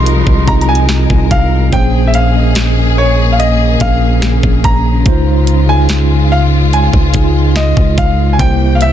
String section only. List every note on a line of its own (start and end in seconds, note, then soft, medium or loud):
0.00 1.69 F3 medium
0.00 1.69 G#3 medium
0.00 1.69 D#4 medium
0.00 1.69 A#4 medium
1.72 8.35 C#3 medium
1.72 5.02 A#3 medium
1.72 5.02 G#4 medium
5.06 8.36 G#3 medium
5.06 8.36 F4 medium
8.39 8.93 E3 medium
8.39 8.93 A#3 medium
8.39 8.93 G5 medium